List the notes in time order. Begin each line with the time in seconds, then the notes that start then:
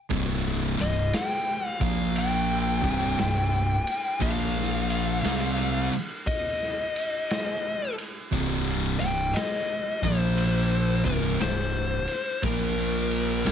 0.11 C1 C2 G2 C3, kick, ride
0.47 snare
0.78 C1 C2 G2 D#5, ride
1.13 G5, snare, ride
1.70 F5
1.81 A#1 A#2 F3 A#3 F5, kick, ride
2.16 G5, ride
2.82 C1 C2 G2 C3, kick, ride
3.18 C1 C2 G2, snare, ride
3.87 ride
4.20 A#1 A#2 F3 A#3 F5, kick, ride
4.58 snare
4.90 ride
5.23 C2 C3 G3 C4, snare, ride
5.93 ride
6.27 D#5, kick, ride
6.63 snare
6.96 ride
7.31 snare, ride
7.98 ride
8.32 C1 C2 G2 C3, kick, ride
8.99 C1 C2 G2 G5, ride
9.34 D#5, snare, ride
10.03 A#1 A#2 F3 A#3 C5, kick, ride
10.38 ride
11.05 C1 C2 G2 C3 A#4, kick, ride
11.41 C1 C2 G2 C5, snare, ride
12.08 ride
12.43 A#1 A#2 F3 A#3 A#4, kick, ride
13.11 ride
13.45 C2 C3 G3 C4, snare, ride